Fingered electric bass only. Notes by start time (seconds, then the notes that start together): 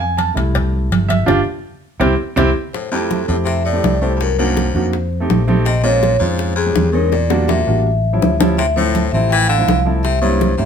Already playing: F2
0.36 C2
0.91 G1
1.27 G1
2.00 C2
2.37 C2
3.29 F2
3.84 C2
4.75 F2
5.30 A#1
6.21 F2
6.76 E2
7.67 A1
8.22 D2
9.13 A1
9.68 C2
10.59 G2